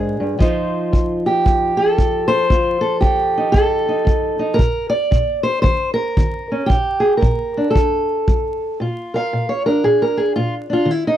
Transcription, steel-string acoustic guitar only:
0.00 0.20 G#2 medium
0.00 0.38 D4 medium
0.00 0.37 G#4 medium
0.00 0.38 A#4 medium
0.20 0.38 G2 medium
0.39 0.88 F2 medium
0.39 4.59 F3 soft
0.39 2.48 D#4 soft
0.39 1.77 F4 soft
0.39 1.26 C5 soft
0.92 1.41 F2 medium
1.26 2.27 G4 medium
1.46 1.94 F2 medium
1.77 2.49 A4 medium
1.98 2.46 F2 medium
2.28 3.00 C5 loud
2.50 2.99 F2 medium
2.50 2.80 F4 medium
2.81 3.51 A4 medium
3.01 3.51 F2 medium
3.01 4.07 G4 medium
3.37 3.87 D#4 soft
3.52 4.03 F2 medium
3.52 4.59 A4 medium
3.89 4.38 D#4 soft
4.05 4.55 F2 medium
4.39 4.57 D#4 soft
4.54 5.07 A#2 medium
4.54 4.89 A#4 loud
4.89 5.43 D5 loud
5.11 5.60 A#2 medium
5.43 5.61 C5 medium
5.62 6.13 D#3 medium
5.62 5.93 C5 loud
5.94 6.66 A#4 medium
6.18 6.66 D#3 medium
6.52 6.68 C#4 soft
6.66 7.18 A#2 medium
6.66 7.17 G4 medium
7.00 7.12 G#4 medium
7.17 7.70 A#2 medium
7.17 7.70 A#4 medium
7.57 7.73 D4 soft
7.71 8.77 A4 medium
7.76 8.24 F2 medium
8.28 8.76 F2 medium
8.80 9.28 A#2 medium
8.80 9.84 F4 soft
9.14 9.49 A#4 soft
9.14 9.50 F5 loud
9.33 9.81 A#2 medium
9.49 9.66 C#5 medium
9.66 10.69 D4 soft
9.66 9.84 A#4 medium
9.84 10.33 A#2 medium
9.84 10.02 G#4 medium
10.02 10.19 A#4 medium
10.17 10.35 G#4 medium
10.36 10.85 A#2 medium
10.36 10.54 F4 medium
10.70 10.87 D4 soft
10.70 10.91 F4 medium
10.85 11.17 D#3 medium
10.91 11.07 E4 medium
11.07 11.17 D#4 medium

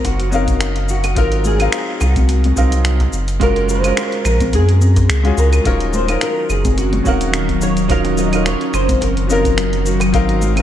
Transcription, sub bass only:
0.05 1.18 F#1 medium
1.17 1.68 G#1 medium
2.01 2.52 C2 loud
2.57 3.09 C2 medium
3.13 3.93 F#1 medium
4.25 4.55 A#1 loud
4.53 5.09 F#2 medium
5.09 5.32 C#2 medium
5.38 5.60 C#2 loud
5.65 6.17 D#1 loud
6.50 7.01 F#1 loud
7.06 8.56 D#1 medium
8.74 8.96 F#1 loud
9.02 10.15 F#1 medium
10.14 10.62 G#1 medium

